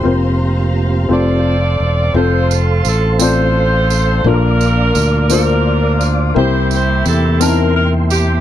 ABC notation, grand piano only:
X:1
M:6/8
L:1/8
Q:3/8=57
K:Fmix
V:1 name="Grand piano"
[CFBc]2 z [CFAc]2 z | [CFAc]2 z [CFAd]2 z | [B,DFAB]2 z [B,DFc]2 z | [B,C=EG]2 z [B,C_E=Ea]2 z |]
V:2 name="Grand piano" clef=bass
z6 | z6 | B,,3 z3 | C,3 z3 |]